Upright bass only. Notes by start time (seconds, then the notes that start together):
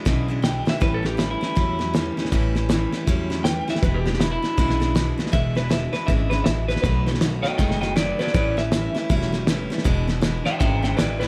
0.06 B1
0.82 A1
1.57 E2
2.32 A1
3.07 E2
3.83 E1
4.58 B1
5.33 E1
6.08 G#1
6.46 A1
6.84 B1
7.59 F#1
8.34 A1
9.10 E1
9.85 E1
10.61 G#1
10.98 A1